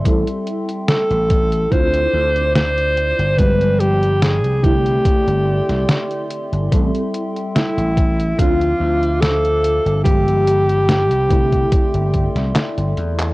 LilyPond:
<<
  \new Staff \with { instrumentName = "Ambient pad" } { \time 4/4 \key c \major \tempo 4 = 72 << { c'''2 d'''2 | b''4. c'''2~ c'''8~ | c'''2 d'''2 | b''4. c'''2~ c'''8 | } \\ { <a' e'' g''>2 <c'' d''>2 | <f g''>4. <a' d'' e''>2~ <a' d'' e''>8 | <a' g''>2 <c'' f''>2 | <aes g''>4. <a' d'' e''>2~ <a' d'' e''>8 | } >> }
  \new Staff \with { instrumentName = "Alto saxophone" } { \time 4/4 \key c \major r4 a'4 c''4 c''4 | b'8 g'8 aes'8 g'2 r8 | r4 e'4 f'4 a'4 | g'2. r4 | }
  \new Staff \with { instrumentName = "FM electric piano" } { \time 4/4 \key c \major <g c' e' a'>2 <c' d' e' f'>2 | <f g aes b>4. <d a c' e'>2~ <d a c' e'>8 | <g c' e' a'>2 <f c' d' f'>2 | <f aes b g'>4. <d a c' e'>2~ <d a c' e'>8 | }
  \new Staff \with { instrumentName = "Slap bass" } { \clef bass \time 4/4 \key c \major a,,16 r4 a,,8. d,8 d,4~ d,16 g,,16~ | g,,4~ g,,16 c,8. r16 g,,8 c,16 r8. g,,16 | a,,16 r4 a,,8. d,8 d,4~ d,16 g,,16~ | g,,4~ g,,16 c,8. r16 g,,8 c,16 r16 g,,16 e,8 | }
  \new DrumStaff \with { instrumentName = "Drums" } \drummode { \time 4/4 <hh bd>16 hh16 hh16 hh16 <hh sn>16 hh16 <hh bd>16 hh16 <hh bd>16 hh8 hh16 <hh sn>16 hh16 hh16 hh16 | <hh bd>16 hh16 hh16 hh16 <hh sn>16 hh16 <hh bd>16 hh16 <hh bd>16 hh8 <hh sn>16 <hh sn>16 hh16 hh16 hh16 | <hh bd>16 hh16 hh16 hh16 <hh sn>16 hh16 <hh bd>16 hh16 <hh bd>16 hh8 hh16 <hh sn>16 hh16 hh16 hh16 | <hh bd>16 hh16 hh16 hh16 <hh sn>16 hh16 <hh bd>16 <hh bd>16 <hh bd>16 hh16 <hh bd>16 <hh sn>16 <hc hh sn>16 hh16 hh16 <hc hh>16 | }
>>